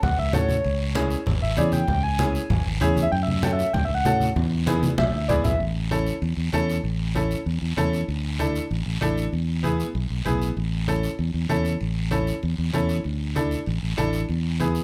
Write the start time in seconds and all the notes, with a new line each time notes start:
0.03 C#2 F#5, high conga, low conga, long guiro
0.19 C#2 E5
0.33 A2 C#4 F#4 A4 C#5, high conga, low conga, short guiro
0.49 high conga, short guiro
0.64 C#2, high conga, long guiro
0.95 C#4 E4 G#4, high conga, short guiro
1.10 short guiro
1.26 G#1, high conga, low conga, long guiro
1.42 G#1 E5
1.57 E2 C#4 E4 G#4 D5, high conga, short guiro
1.72 G5, high conga, short guiro
1.88 C#2 G5, high conga, low conga, long guiro
2.03 G#5
2.19 C#4 E4 G#4, high conga, short guiro
2.35 short guiro
2.50 G#1, high conga, low conga, long guiro
2.66 G#1
2.81 E2 C#4 E4 G#4, high conga, low conga, short guiro
2.97 high conga, short guiro
3.02 E5
3.12 F#2 G5, high conga, long guiro
3.23 E5
3.27 high conga
3.33 E5
3.43 C#4 F#4 A4 G5, high conga, short guiro
3.53 E5
3.59 E5, short guiro
3.73 C#2 G5, high conga, low conga, long guiro
3.85 E5
3.89 C#2
3.95 F#5
4.05 A2 C#4 F#4 A4, high conga, short guiro
4.20 high conga, short guiro
4.36 E2, high conga, low conga, long guiro
4.66 B3 E4 G#4, high conga, short guiro
4.83 high conga, short guiro
4.98 B1 E5, high conga, long guiro
5.13 D2
5.28 C#2 B3 E4 G#4 D5, low conga, short guiro
5.44 B1 E5, low conga, short guiro
5.60 A1, high conga, long guiro
5.91 C#4 E4 A4, high conga, short guiro
6.07 short guiro
6.22 E2, high conga, long guiro
6.37 E2
6.53 E2 C#4 E4 A4, high conga, short guiro
6.70 short guiro
6.84 A1, high conga, long guiro
7.15 C#4 E4 A4, high conga, short guiro
7.31 short guiro
7.46 E2, high conga, long guiro
7.62 E2
7.77 E2 C#4 E4 A4, high conga, short guiro
7.93 short guiro
8.08 D2, high conga, long guiro
8.39 D4 E4 A4, high conga, short guiro
8.55 short guiro
8.70 A1, high conga, long guiro
8.86 A1
9.01 A1 D4 E4 A4, high conga, short guiro
9.18 short guiro
9.32 E2, high conga, long guiro
9.63 B3 E4 G#4, high conga, short guiro
9.80 short guiro
9.95 B1, high conga, long guiro
10.10 B1
10.25 B1 B3 E4 G#4, high conga, short guiro
10.42 short guiro
10.56 A1, high conga, long guiro
10.88 C#4 E4 A4, high conga, short guiro
11.03 short guiro
11.19 E2, high conga, long guiro
11.34 E2
11.49 E2 C#4 E4 A4, high conga, short guiro
11.65 short guiro
11.80 A1, high conga, long guiro
12.11 C#4 E4 A4, high conga, short guiro
12.27 short guiro
12.43 E2, high conga, long guiro
12.58 E2
12.73 E2 C#4 E4 A4, high conga, short guiro
12.89 short guiro
13.04 D2, high conga, long guiro
13.35 D4 E4 A4, high conga, short guiro
13.51 short guiro
13.66 A1, high conga, long guiro
13.83 A1
13.97 A1 D4 E4 A4, high conga, short guiro
14.13 short guiro
14.29 E2, high conga, long guiro
14.60 B3 E4 G#4, high conga, short guiro
14.75 short guiro